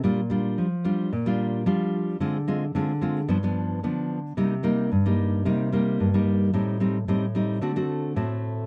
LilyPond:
\new Staff \with { instrumentName = "Nylon-string guitar" } { \time 4/4 \key c \dorian \tempo 4 = 111 << { <g d' f'>16 r16 <g d' f'>8. r16 <g d' f'>8 r16 <g d' f'>8. <g d' f'>4 | <aes c' f'>16 r16 <aes c' f'>16 r16 <aes c' f'>16 r16 <aes c' f'>16 r16 <f b d'>16 <f b d'>8. <f b d'>8. r16 | <g bes ees'>16 r16 <g bes ees'>8 r16 <g bes ees'>8. <g bes ees'>8 <g bes ees'>8. <g bes ees'>8. | <g c' ees'>8 <g c' ees'>16 r16 <g c' ees'>16 r16 <g c' ees'>8 <a c' fis'>16 <a c' fis'>8. <a c' fis'>4 | } \\ { bes,4 f4 bes,4 f4 | d4 d4 g,4 d4 | c4 g,4 c4 g,4 | a,4 a,4 d4 a,4 | } >> }